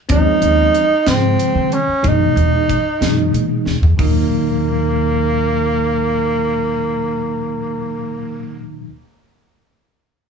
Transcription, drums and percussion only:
0.09 kick, closed hi-hat
0.42 closed hi-hat
0.74 closed hi-hat
1.07 snare, closed hi-hat
1.39 closed hi-hat
1.72 closed hi-hat
2.04 kick, closed hi-hat
2.37 closed hi-hat
2.69 kick, closed hi-hat
3.02 snare, closed hi-hat
3.34 closed hi-hat
3.66 snare
3.83 floor tom
3.99 kick, open hi-hat

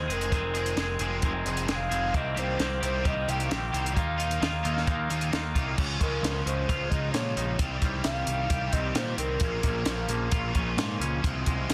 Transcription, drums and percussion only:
0.10 closed hi-hat
0.21 closed hi-hat
0.32 kick, closed hi-hat
0.55 closed hi-hat
0.66 closed hi-hat
0.77 snare, closed hi-hat
0.99 closed hi-hat
1.22 kick, closed hi-hat
1.46 closed hi-hat
1.57 closed hi-hat
1.68 snare, closed hi-hat
1.92 closed hi-hat
2.14 kick, closed hi-hat
2.37 closed hi-hat
2.60 snare, closed hi-hat
2.83 closed hi-hat
3.05 kick, closed hi-hat
3.29 closed hi-hat
3.40 closed hi-hat
3.51 snare, closed hi-hat
3.74 closed hi-hat
3.86 closed hi-hat
3.97 kick, closed hi-hat
4.20 closed hi-hat
4.31 closed hi-hat
4.42 snare, closed hi-hat
4.65 closed hi-hat
4.77 snare
4.87 kick, closed hi-hat
5.10 closed hi-hat
5.21 closed hi-hat
5.33 snare, closed hi-hat
5.55 kick, closed hi-hat
5.78 kick, crash
6.01 kick, closed hi-hat
6.24 snare, closed hi-hat
6.47 closed hi-hat
6.69 kick, closed hi-hat
6.91 kick, closed hi-hat
7.14 snare, closed hi-hat
7.37 closed hi-hat
7.59 kick, closed hi-hat
7.82 kick, closed hi-hat
8.04 snare, closed hi-hat
8.27 closed hi-hat
8.50 kick, closed hi-hat
8.73 kick, closed hi-hat
8.95 snare, closed hi-hat
9.18 closed hi-hat
9.40 kick, closed hi-hat
9.63 kick, closed hi-hat
9.86 snare, closed hi-hat
10.09 closed hi-hat
10.32 kick, closed hi-hat
10.55 kick, closed hi-hat
10.78 snare, closed hi-hat
11.01 closed hi-hat
11.24 kick, closed hi-hat
11.46 kick, closed hi-hat
11.70 snare, closed hi-hat

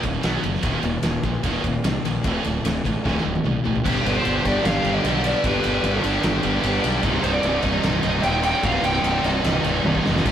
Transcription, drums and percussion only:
0.03 kick, ride
0.23 snare, ride
0.43 ride
0.54 snare
0.63 kick, ride
0.83 ride
1.03 snare, ride
1.23 kick, ride
1.43 kick, ride
1.64 kick, ride
1.84 snare, ride
2.05 ride
2.24 kick, ride
2.44 ride
2.65 snare, ride
2.85 kick, ride
3.06 kick, snare
3.17 snare
3.35 high tom
3.45 mid tom
3.65 floor tom
3.76 floor tom
3.86 kick, crash
4.06 ride
4.25 ride
4.45 kick, snare, ride
4.65 snare, ride
4.85 ride
5.04 snare, ride
5.24 ride
5.44 kick, ride
5.64 ride
5.84 ride
6.04 ride
6.23 snare, ride
6.43 ride
6.64 ride
6.84 ride
7.03 kick, ride
7.24 ride
7.43 ride
7.62 kick, snare, ride
7.83 snare, ride
8.03 ride
8.23 ride
8.43 ride
8.63 kick, ride
8.84 ride
9.04 ride
9.24 ride
9.44 snare, ride
9.64 ride
9.85 high tom
9.95 kick
10.06 snare
10.16 snare
10.26 kick, crash

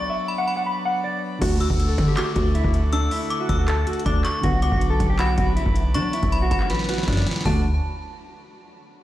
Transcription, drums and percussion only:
1.42 kick, closed hi-hat, crash
1.60 closed hi-hat
1.70 kick
1.79 closed hi-hat
1.98 kick, closed hi-hat
2.17 clap, closed hi-hat
2.36 kick, closed hi-hat
2.55 closed hi-hat
2.64 kick
2.74 closed hi-hat
2.93 closed hi-hat
3.11 open hi-hat
3.30 closed hi-hat
3.49 kick, closed hi-hat
3.68 clap, closed hi-hat
3.87 closed hi-hat
3.93 closed hi-hat
3.99 closed hi-hat
4.06 kick, closed hi-hat
4.25 clap, closed hi-hat
4.43 kick, closed hi-hat
4.62 closed hi-hat
4.72 kick
4.81 closed hi-hat
5.00 kick, closed hi-hat
5.19 clap, closed hi-hat
5.38 kick, closed hi-hat
5.57 closed hi-hat
5.66 kick
5.76 closed hi-hat
5.94 closed hi-hat
6.13 closed hi-hat, open hi-hat
6.23 kick, closed hi-hat
6.32 closed hi-hat
6.51 kick, closed hi-hat
6.60 clap
6.70 snare, closed hi-hat
6.75 snare
6.79 snare
6.84 snare
6.89 snare, closed hi-hat
6.94 snare
6.98 snare
7.03 snare
7.08 kick, snare, closed hi-hat
7.12 snare
7.17 snare
7.22 snare
7.27 snare, closed hi-hat
7.31 snare
7.36 snare
7.41 snare
7.45 kick, floor tom, open hi-hat

